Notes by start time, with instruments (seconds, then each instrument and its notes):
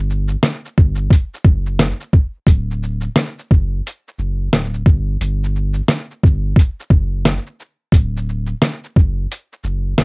Already playing: sub bass G1
0.10 shaker
0.28 shaker
0.43 snare, closed hi-hat, shaker
0.65 shaker
0.78 sub bass G1, kick, shaker
0.95 shaker
1.10 kick, closed hi-hat, shaker
1.34 shaker
1.45 sub bass F#1, kick, shaker
1.66 shaker
1.79 snare, closed hi-hat, shaker
2.00 shaker
2.13 kick, shaker
2.47 sub bass D1, kick, closed hi-hat, shaker
2.71 shaker
2.83 shaker
3.01 shaker
3.16 snare, closed hi-hat, shaker
3.39 shaker
3.51 sub bass F#1, kick, shaker
3.87 closed hi-hat, shaker
4.08 shaker
4.18 sub bass F#1, shaker
4.53 sub bass D1, snare, closed hi-hat, shaker
4.74 shaker
4.86 sub bass G1, kick, shaker
5.21 sub bass G1, closed hi-hat, shaker
5.44 shaker
5.56 shaker
5.73 shaker
5.88 snare, closed hi-hat, shaker
6.11 shaker
6.23 sub bass G1, kick, shaker
6.56 kick, closed hi-hat, shaker
6.80 shaker
6.90 sub bass F#1, kick, shaker
7.25 snare, closed hi-hat, shaker
7.46 shaker
7.60 shaker
7.92 sub bass D1, kick, closed hi-hat, shaker
8.17 shaker
8.29 shaker
8.46 shaker
8.62 snare, closed hi-hat, shaker
8.84 shaker
8.96 sub bass F#1, kick, shaker
9.32 closed hi-hat, shaker
9.53 shaker
9.64 sub bass F#1, shaker
9.98 sub bass D1, snare, closed hi-hat, shaker